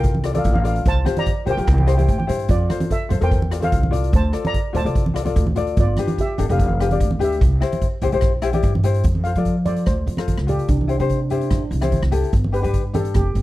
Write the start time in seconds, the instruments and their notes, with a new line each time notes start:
Already playing: upright bass C2, ukulele F4 A4 F5, steel pan A#4 G5
0.03 kick, closed hi-hat
0.14 high conga
0.24 ukulele F4 A4 D5, cross-stick, closed hi-hat
0.33 ukulele F4 A4 D5, steel pan A4, closed hi-hat, high conga
0.38 steel pan F5
0.44 upright bass A1, steel pan F5, kick, closed hi-hat
0.54 steel pan F5, high conga, low conga
0.59 steel pan F5
0.63 ukulele F4 A4 D5, closed hi-hat
0.67 steel pan F5
0.75 steel pan F5, closed hi-hat
0.85 upright bass C2, steel pan C5 A5, kick, closed hi-hat
1.05 ukulele F4 G4 C5, cross-stick, closed hi-hat, high conga
1.16 steel pan D5 A#5, closed hi-hat, high conga
1.26 kick, closed hi-hat
1.45 upright bass C2, ukulele F4 G4 C5, steel pan A#4, closed hi-hat, low conga
1.51 steel pan G5
1.57 upright bass A#1, ukulele F4 G4 A#4, steel pan G5, closed hi-hat
1.65 upright bass C2, steel pan G5, kick, cross-stick, closed hi-hat
1.74 steel pan G5
1.78 steel pan G5, high conga
1.86 ukulele E4 G4 C5, steel pan G5, cross-stick, closed hi-hat
1.95 ukulele E4 G4 C5, steel pan G5, closed hi-hat, high conga
2.03 steel pan G5
2.08 upright bass A2, steel pan G5, kick, closed hi-hat
2.18 steel pan G5, high conga
2.27 upright bass G2, ukulele E4 G4 C5, closed hi-hat, low conga
2.48 upright bass F2, steel pan F4 D5, kick, closed hi-hat
2.69 ukulele F4 A4 C5, cross-stick, closed hi-hat, high conga
2.80 closed hi-hat, high conga
2.90 steel pan A4 E5, kick, closed hi-hat
3.09 upright bass F2, ukulele F4 A4 C5, closed hi-hat, low conga
3.21 upright bass E2, ukulele F4 A4 C5, steel pan A#4 G5, closed hi-hat
3.31 kick, closed hi-hat
3.42 high conga
3.51 ukulele F4 A4 D5, cross-stick, closed hi-hat
3.60 ukulele F4 A4 C5, steel pan A4, closed hi-hat, high conga
3.64 steel pan F5
3.72 upright bass C2, kick, closed hi-hat
3.83 high conga, low conga
3.91 ukulele F4 A4 D5, closed hi-hat, low conga
4.04 closed hi-hat
4.13 upright bass D2, steel pan C5 A5, kick, closed hi-hat
4.32 ukulele F4 A4 D5, cross-stick, closed hi-hat
4.45 steel pan D5 A#5, closed hi-hat, high conga
4.54 kick, closed hi-hat
4.73 upright bass D2, ukulele F4 A4 D5, steel pan C5 A5, closed hi-hat, low conga
4.84 upright bass C2, ukulele F4 A4 D5, closed hi-hat
4.95 kick, closed hi-hat
5.06 high conga
5.14 ukulele F4 A4 D5, cross-stick, closed hi-hat
5.25 ukulele F4 A4 D5, closed hi-hat, high conga
5.36 upright bass D2, kick, closed hi-hat
5.47 high conga, low conga
5.56 ukulele F4 A4 D5, closed hi-hat, low conga
5.67 closed hi-hat
5.77 upright bass G1, steel pan F4 D5, kick, closed hi-hat
5.97 ukulele D4 G4 B4, cross-stick, closed hi-hat, high conga
6.07 closed hi-hat, high conga
6.18 steel pan G4 E5, kick, closed hi-hat
6.38 upright bass G1, ukulele D4 G4 A4, closed hi-hat, low conga
6.49 upright bass F1, ukulele D4 G4 B4, steel pan A4 F5, closed hi-hat
6.59 steel pan F5, kick, closed hi-hat
6.66 steel pan F5, high conga
6.74 steel pan F5
6.79 ukulele D4 G4 B4, steel pan F5, cross-stick, closed hi-hat
6.89 ukulele D4 G4 D5, steel pan F5, closed hi-hat, high conga
7.00 upright bass D2, kick, closed hi-hat
7.11 high conga, low conga
7.19 ukulele D4 G4 B4, steel pan G4, closed hi-hat, low conga
7.24 steel pan E5
7.32 closed hi-hat
7.41 upright bass C2, kick, closed hi-hat
7.61 ukulele E4 G4 C5, cross-stick, closed hi-hat
7.72 closed hi-hat, high conga
7.81 kick, closed hi-hat
8.02 upright bass C2, ukulele E4 G4 C5, closed hi-hat, low conga
8.12 upright bass A#1, ukulele E4 G4 C5, closed hi-hat
8.21 kick, cross-stick, closed hi-hat
8.42 ukulele E4 G4 C5, cross-stick, closed hi-hat
8.53 ukulele E4 G4 D5, closed hi-hat, high conga
8.62 upright bass G2, kick, closed hi-hat
8.75 high conga, low conga
8.83 ukulele E4 G4 C5, closed hi-hat, low conga
8.94 closed hi-hat
9.03 upright bass F2, kick, closed hi-hat
9.15 high conga
9.24 ukulele F4 A4 C5, steel pan F5, closed hi-hat
9.35 upright bass F3, ukulele F4 A4 D5, closed hi-hat
9.45 kick, closed hi-hat
9.65 ukulele F4 A4 C5, steel pan D5, closed hi-hat, high conga, low conga
9.76 closed hi-hat
9.86 upright bass D2, steel pan C5, kick, cross-stick, closed hi-hat, low conga
10.07 upright bass F2, closed hi-hat, low conga
10.17 ukulele F4 A4 C5, cross-stick, closed hi-hat, high conga
10.28 kick, closed hi-hat, high conga
10.38 upright bass C#2, cross-stick
10.47 ukulele F4 A4 D5, steel pan G4, closed hi-hat, low conga
10.59 closed hi-hat
10.68 upright bass C2, steel pan D4, kick, closed hi-hat
10.77 steel pan D4, high conga
10.84 steel pan D4, ukulele E4
10.89 steel pan D4, ukulele G4 C5, closed hi-hat
10.98 upright bass C3, steel pan D4, ukulele E4 G4 C5, closed hi-hat
11.05 steel pan D4
11.09 steel pan D4, kick, closed hi-hat
11.22 steel pan D4
11.29 steel pan D4, ukulele E4 G4 C5, closed hi-hat, low conga
11.37 steel pan D4
11.41 steel pan D4, closed hi-hat
11.51 upright bass A1, steel pan D4, kick, cross-stick, closed hi-hat, low conga
11.58 steel pan D4
11.71 upright bass C2, closed hi-hat, low conga
11.81 ukulele E4 G4 C5, cross-stick, closed hi-hat, high conga
11.92 kick, closed hi-hat, high conga
12.02 upright bass C2, cross-stick
12.11 ukulele E4 G4 A4, closed hi-hat, low conga
12.24 closed hi-hat
12.33 upright bass G1, kick, closed hi-hat
12.44 high conga
12.52 ukulele D4 G4 B4, steel pan B4, closed hi-hat
12.62 upright bass G2, ukulele D4 G4 B4, closed hi-hat
12.73 kick, closed hi-hat
12.93 ukulele D4 G4 A4, steel pan A4, closed hi-hat, high conga, low conga
13.05 closed hi-hat
13.14 upright bass F1, steel pan G4, kick, cross-stick, closed hi-hat, low conga
13.35 upright bass G1, closed hi-hat, low conga